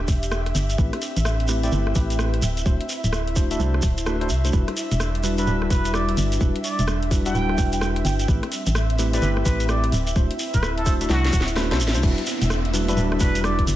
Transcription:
Already playing: D4 G4 E5
0.08 E1, kick, open hi-hat, shekere
0.23 closed hi-hat, shekere
0.32 cross-stick, shekere
0.46 cross-stick, closed hi-hat
0.55 G1, open hi-hat, shekere
0.70 closed hi-hat, shekere
0.78 A1 A3 C4 E4 G4 B4, kick, shekere
0.93 cross-stick, closed hi-hat
1.02 open hi-hat, shekere
1.10 B4
1.17 A1, closed hi-hat, shekere
1.25 cross-stick, shekere
1.40 closed hi-hat
1.45 A3 C4 E4 G4 B4 G5, cross-stick, open hi-hat, shekere
1.63 A3 C4 E4 G4 D5, closed hi-hat, shekere
1.72 G1 A3 C4 E4 G4 B4, shekere
1.87 cross-stick
1.95 A1 A3 C4 E4 G4 B4, kick, open hi-hat, shekere
2.10 closed hi-hat, shekere
2.19 cross-stick, shekere
2.34 cross-stick, closed hi-hat
2.42 D1 E4, open hi-hat, shekere
2.57 closed hi-hat, shekere
2.66 D1 A3 D4 E4 F#4 C5, kick, shekere
2.81 closed hi-hat
2.89 open hi-hat, shekere
3.04 D1, closed hi-hat, shekere
3.13 cross-stick, shekere
3.18 C5
3.27 closed hi-hat
3.36 A3 D4 E4 F#4 C5 E5, kick, open hi-hat, shekere
3.51 A3 D4 E4 F#4 E5, closed hi-hat, shekere
3.59 C2 A3 D4 E4 F#4 C5, shekere
3.74 cross-stick
3.82 D1, kick, open hi-hat, shekere
3.98 closed hi-hat, shekere
4.06 A3 D4 E4 F#4 B4, cross-stick, shekere
4.21 A3 D4 E4 F#4 C5, cross-stick, closed hi-hat
4.29 C2, open hi-hat, shekere
4.45 A3 D4 E4 F#4 C5, closed hi-hat, shekere
4.53 E1 G3 D4 E4 F#4 B4 E5, kick, shekere
4.66 G3, cross-stick, closed hi-hat
4.77 open hi-hat, shekere
4.91 E1, closed hi-hat, shekere
5.00 cross-stick, shekere
5.15 closed hi-hat
5.24 G3 D4 E4 F#4 B4, cross-stick, open hi-hat, shekere
5.38 G3 D4 E4 F#4 B4 E5, closed hi-hat, shekere
5.47 D1 G3 D4 E4 F#4 B4, shekere
5.62 cross-stick
5.70 E1 G3 D4 E4 F#4 B4, kick, open hi-hat, shekere
5.85 closed hi-hat, shekere
5.94 D5, cross-stick, shekere
6.09 cross-stick, closed hi-hat
6.17 G1, open hi-hat, shekere
6.32 closed hi-hat, shekere
6.41 E1 G3 D4 E4 F#4 B4, kick, shekere
6.56 closed hi-hat
6.64 D5, open hi-hat, shekere
6.79 E1, closed hi-hat, shekere
6.88 cross-stick, shekere
7.02 closed hi-hat
7.11 G3 D4 E4 F#4 B4, kick, open hi-hat, shekere
7.26 G3 D4 E4 F#4 E5 G5, closed hi-hat, shekere
7.35 D1 G3 D4 E4 F#4 B4, shekere
7.49 cross-stick
7.58 E1 G3 D4 E4 F#4 B4, kick, open hi-hat, shekere
7.72 G5, closed hi-hat, shekere
7.81 cross-stick, shekere
7.96 cross-stick, closed hi-hat
8.05 G1 G5, open hi-hat, shekere
8.20 G5, closed hi-hat, shekere
8.28 A1 A3 C4 E4 G4 B4, kick, shekere
8.43 cross-stick, closed hi-hat
8.52 open hi-hat, shekere
8.66 A1, closed hi-hat, shekere
8.75 B4, cross-stick, shekere
8.90 closed hi-hat
8.98 A3 C4 E4 G4 B4, open hi-hat, shekere
9.03 G5
9.13 A3 C4 E4 G4 B4 D5, closed hi-hat, shekere
9.22 G1 A3 C4 E4 G4 B4, shekere
9.37 cross-stick
9.45 A1 A3 C4 E4 G4 B4, kick, open hi-hat, shekere
9.60 closed hi-hat, shekere
9.69 D5, cross-stick, shekere
9.84 cross-stick, closed hi-hat
9.92 D1 E4, open hi-hat, shekere
10.07 closed hi-hat, shekere
10.16 D1 A3 D4 E4 F#4 C5, kick, shekere
10.31 E5, closed hi-hat
10.39 open hi-hat, shekere
10.52 D1 B4 C5, kick, closed hi-hat, shekere
10.63 cross-stick, shekere
10.78 A4, closed hi-hat
10.86 A3 D4 E4 F#4 C5, kick, cross-stick, open hi-hat, shekere
11.01 A3 D4 E4 F#4 E5, closed hi-hat, shekere
11.10 C2 A3 D4 E4 F#4 C5, snare, shekere
11.24 snare, closed hi-hat
11.33 D1, kick, open hi-hat, shekere
11.41 snare
11.47 closed hi-hat, shekere
11.56 A3 D4 E4 F#4 B4, cross-stick, snare, shekere
11.71 C2 A3 D4 E4 F#4 C5, snare, closed hi-hat
11.80 A1, open hi-hat, shekere
11.88 snare
11.94 C2 A3 D4 E4 F#4 C5, closed hi-hat, shekere
12.03 E1 G3 D4 E4 F#4 B4 E5, kick, crash, downlifter, shekere
12.18 closed hi-hat
12.26 open hi-hat, shekere
12.42 E1, closed hi-hat, shekere
12.50 cross-stick, shekere
12.65 G3, closed hi-hat
12.74 G3 D4 E4 F#4 B4, open hi-hat, shekere
12.88 G3 D4 E4 F#4 B4 E5, closed hi-hat, shekere
12.97 D1 G3 D4 E4 F#4 B4, shekere
13.12 cross-stick
13.20 E1 G3 D4 E4 F#4 B4, kick, open hi-hat, shekere
13.35 closed hi-hat, shekere
13.44 D5, cross-stick, shekere
13.59 kick, closed hi-hat
13.67 G1, open hi-hat, shekere

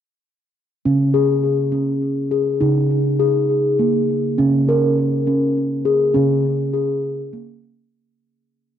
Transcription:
0.85 C#3 C#4
1.14 G#4
1.72 C#4
2.31 G#4
2.61 C#3 D#4
3.20 G#4
3.79 A#3
4.38 C#3 C#4
4.69 A#4
5.27 C#4
5.85 G#4
6.14 C#3 C#4
6.73 G#4
7.33 A#3

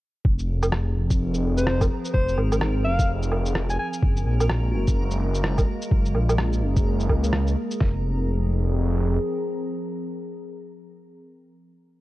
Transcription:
0.24 F1 F3 C4 G#4 A#4, kick
0.39 shaker
0.63 low woodblock, shaker
0.72 cross-stick
0.96 F1
1.10 kick, shaker
1.34 shaker
1.57 C5, shaker
1.67 cross-stick
1.81 kick, low woodblock, shaker
2.05 shaker
2.14 F1 C5, kick
2.28 shaker
2.37 G#1, low woodblock
2.52 low woodblock, shaker
2.61 cross-stick
2.84 F1 F5
2.99 kick, shaker
3.23 shaker
3.32 low woodblock
3.46 shaker
3.55 cross-stick
3.70 G#5, shaker
3.79 G#5
3.93 shaker
4.02 F#1 G#3 A#3 F#4, kick
4.17 shaker
4.26 A#1
4.40 low woodblock, shaker
4.50 cross-stick
4.73 F#1
4.87 kick, shaker
5.11 shaker
5.34 shaker
5.44 cross-stick
5.58 kick, low woodblock, shaker
5.82 shaker
5.91 F#1 G#4, kick
6.06 shaker
6.15 A#1, low woodblock
6.29 low woodblock, shaker
6.38 cross-stick
6.53 shaker
6.62 F#1
6.76 kick, shaker
7.00 shaker
7.09 C#2, kick, low woodblock
7.24 shaker
7.33 cross-stick
7.47 shaker
7.71 shaker
7.80 F1 F3 C4 G#4, kick, snare

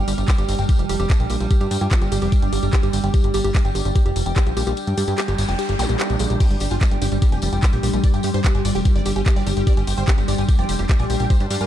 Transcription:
Already playing: G3 D4 G4 G5 F6
0.08 G1 G4, open hi-hat, tambourine
0.18 G1 G4, closed hi-hat, tambourine
0.28 G4, kick, clap, closed hi-hat, tambourine
0.38 G1 G4, closed hi-hat, tambourine
0.49 G1 C4, open hi-hat, tambourine
0.58 G1 C4 G5, closed hi-hat, tambourine
0.63 D6
0.69 G4, kick, closed hi-hat, tambourine
0.79 F1 G4, closed hi-hat, tambourine
0.89 F1 G4, open hi-hat, tambourine
1.00 F1 G4, closed hi-hat, tambourine
1.10 kick, clap, closed hi-hat, tambourine
1.20 A#1 G5, closed hi-hat, tambourine
1.30 A#1 G4, open hi-hat, tambourine
1.40 A#1 G4, closed hi-hat, tambourine
1.50 G4, kick, closed hi-hat, tambourine
1.60 G2 G4, closed hi-hat, tambourine
1.71 G2, open hi-hat, tambourine
1.81 G2 F4 G5, closed hi-hat, tambourine
1.91 G4, kick, clap, closed hi-hat, tambourine
2.02 G1 G4, closed hi-hat, tambourine
2.12 G1 D4 G4, open hi-hat, tambourine
2.21 F1 G4, open hi-hat, tambourine
2.32 kick, closed hi-hat, tambourine
2.42 G1 G5, closed hi-hat, tambourine
2.53 G1 G4, open hi-hat, tambourine
2.63 G1 G4, closed hi-hat, tambourine
2.73 G4, kick, clap, closed hi-hat, tambourine
2.83 G1 G4, closed hi-hat, tambourine
2.93 G1, open hi-hat, tambourine
3.03 G1 G5, closed hi-hat, tambourine
3.14 G4, kick, closed hi-hat, tambourine
3.23 G1 G4, closed hi-hat, tambourine
3.34 G1 G4, open hi-hat, tambourine
3.44 G1 G4, closed hi-hat, tambourine
3.55 kick, clap, closed hi-hat, tambourine
3.65 G1 G5, closed hi-hat, tambourine
3.75 G1 G4, open hi-hat, tambourine
3.85 G1 G4 G6, closed hi-hat, tambourine
3.96 G4, kick, closed hi-hat, tambourine
4.06 F1 G4, closed hi-hat, tambourine
4.16 F1, open hi-hat, tambourine
4.26 F1 G5, closed hi-hat, tambourine
4.36 G4, kick, clap, closed hi-hat, tambourine
4.46 A#1 G4, closed hi-hat, tambourine
4.57 A#1 G4, open hi-hat, tambourine
4.67 A#1 G4, closed hi-hat, tambourine
4.77 closed hi-hat, tambourine, noise sweep
4.87 G2 G5, closed hi-hat, tambourine
4.97 G2 G4, open hi-hat, tambourine
5.08 G2 G4, closed hi-hat, tambourine
5.18 G4, clap, closed hi-hat, tambourine
5.28 G1 G4, closed hi-hat, tambourine
5.38 G1, open hi-hat, tambourine
5.49 F1 G5, open hi-hat, tambourine
5.59 G4, closed hi-hat, tambourine
5.69 G1 G4, closed hi-hat, tambourine
5.79 A#1 G5, open hi-hat, tambourine, zap
5.89 A#1 G4, closed hi-hat, tambourine
6.00 G4, clap, closed hi-hat, tambourine
6.10 A#1 G4, closed hi-hat, tambourine
6.19 A#1 G#4, open hi-hat, tambourine
6.30 A#1 G4, closed hi-hat, tambourine
6.40 G3 G4 C6, kick, closed hi-hat, crash, tambourine
6.51 G1 G3 G4, closed hi-hat, tambourine
6.60 G1 G3 G4, open hi-hat, tambourine
6.71 G1 F4 G#5, closed hi-hat, tambourine
6.81 G3, kick, clap, closed hi-hat, tambourine
6.91 G1 G3 G5, closed hi-hat, tambourine
7.02 G1 C4 G4, open hi-hat, tambourine
7.12 G1 G3 C4 G4, closed hi-hat, tambourine
7.22 G3 G4, kick, closed hi-hat, tambourine
7.32 F1 G4 G#5, closed hi-hat, tambourine
7.42 F1 G3, open hi-hat, tambourine
7.52 F1 G3 G5, closed hi-hat, tambourine
7.63 G3 G4, kick, clap, closed hi-hat, tambourine
7.73 A#1 G4, closed hi-hat, tambourine
7.83 A#1 G3 G4, open hi-hat, tambourine
7.93 A#1 G3 G#5, closed hi-hat, tambourine
8.04 D5, kick, closed hi-hat, tambourine
8.14 G2 G4 G5, closed hi-hat, tambourine
8.23 G2 G4, open hi-hat, tambourine
8.34 G2 G3 G4 C5, closed hi-hat, tambourine
8.44 G4, kick, clap, closed hi-hat, tambourine
8.55 G1 G4 G#5, closed hi-hat, tambourine
8.65 G1 F3 D5, open hi-hat, tambourine
8.75 F1 G4 G5, open hi-hat, tambourine
8.85 G4, kick, closed hi-hat, tambourine
8.96 G1 G4 D5, closed hi-hat, tambourine
9.05 G1 G4, open hi-hat, tambourine
9.16 G1 G4 G#5, closed hi-hat, tambourine
9.26 G4, kick, clap, closed hi-hat, tambourine
9.36 G1 D5 G5, closed hi-hat, tambourine
9.47 G1 G4, open hi-hat, tambourine
9.57 G1 G4, closed hi-hat, tambourine
9.67 G4 D5, kick, closed hi-hat, tambourine
9.77 G1 G4 G#5, closed hi-hat, tambourine
9.87 G1 G4, open hi-hat, tambourine
9.98 G1 C5 G5, closed hi-hat, tambourine
10.08 G4, kick, clap, closed hi-hat, tambourine
10.18 G1 G4, closed hi-hat, tambourine
10.28 G1 G4 D5, open hi-hat, tambourine
10.38 G1 G4 G#5, closed hi-hat, tambourine
10.49 G4, kick, closed hi-hat, tambourine
10.59 F1 D5 G5, closed hi-hat, tambourine
10.69 F1 G4, open hi-hat, tambourine
10.79 F1 G4, closed hi-hat, tambourine
10.89 G4, kick, clap, closed hi-hat, tambourine
10.99 A#1 D5 G#5, closed hi-hat, tambourine
11.10 A#1 G4, open hi-hat, tambourine
11.19 A#1 G4 G5, closed hi-hat, tambourine
11.30 G4 C5, kick, closed hi-hat, tambourine
11.40 G2 D4 G4, closed hi-hat, tambourine
11.50 G2 D4 G4, open hi-hat, tambourine
11.61 G2 A#4 G#5, closed hi-hat, tambourine

